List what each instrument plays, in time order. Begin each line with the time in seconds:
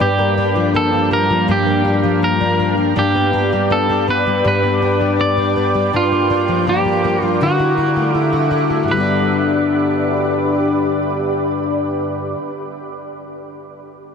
Already playing: twelve-string acoustic guitar G3, ambient pad G5 D6
0.00 twelve-string acoustic guitar G2 D4, ambient pad G3 A#3 F5, clean electric guitar G4
0.19 twelve-string acoustic guitar A#3
0.38 twelve-string acoustic guitar D4
0.56 twelve-string acoustic guitar F3
0.74 twelve-string acoustic guitar A#3, clean electric guitar A4
0.93 twelve-string acoustic guitar D4
1.11 twelve-string acoustic guitar A#3, clean electric guitar A#4
1.30 twelve-string acoustic guitar F3
1.48 twelve-string acoustic guitar G2 D4, clean electric guitar G4
1.66 twelve-string acoustic guitar A#3
1.85 twelve-string acoustic guitar D4
2.03 twelve-string acoustic guitar F3
2.22 twelve-string acoustic guitar A#3, clean electric guitar A#4
2.41 twelve-string acoustic guitar D4
2.59 twelve-string acoustic guitar A#3
2.77 twelve-string acoustic guitar F3
2.96 twelve-string acoustic guitar G2 D4, clean electric guitar G4, ambient pad B4 D5 G5 D6
3.15 twelve-string acoustic guitar B3
3.33 twelve-string acoustic guitar D4
3.52 twelve-string acoustic guitar G3
3.70 twelve-string acoustic guitar B3, clean electric guitar A4
3.89 twelve-string acoustic guitar D4
4.08 twelve-string acoustic guitar B3, clean electric guitar B4
4.26 twelve-string acoustic guitar G3
4.44 twelve-string acoustic guitar G2 D4, clean electric guitar B4
4.63 twelve-string acoustic guitar B3
4.82 twelve-string acoustic guitar D4
5.01 twelve-string acoustic guitar G3
5.19 twelve-string acoustic guitar B3, clean electric guitar D5
5.37 twelve-string acoustic guitar D4
5.56 twelve-string acoustic guitar B3
5.74 twelve-string acoustic guitar G3
5.93 twelve-string acoustic guitar G2 D4, ambient pad G3 A#4 F5 D6, clean electric guitar F4
6.12 twelve-string acoustic guitar A#3
6.30 twelve-string acoustic guitar D4
6.48 twelve-string acoustic guitar F3
6.67 twelve-string acoustic guitar A#3, clean electric guitar G4
6.85 twelve-string acoustic guitar D4
7.04 twelve-string acoustic guitar A#3
7.22 twelve-string acoustic guitar F3, clean electric guitar F4
7.41 twelve-string acoustic guitar D3 F#4, clean electric guitar F#4, ambient pad A4 E5 F#5
7.59 twelve-string acoustic guitar E4
7.78 twelve-string acoustic guitar F#4
7.96 twelve-string acoustic guitar A3
8.14 twelve-string acoustic guitar E4, clean electric guitar E4
8.33 twelve-string acoustic guitar F#4
8.51 twelve-string acoustic guitar E4
8.70 twelve-string acoustic guitar A3
8.83 twelve-string acoustic guitar G2
8.88 twelve-string acoustic guitar D3, ambient pad G4 B4 D5, clean electric guitar B4
8.92 twelve-string acoustic guitar G3
8.96 twelve-string acoustic guitar B3 D4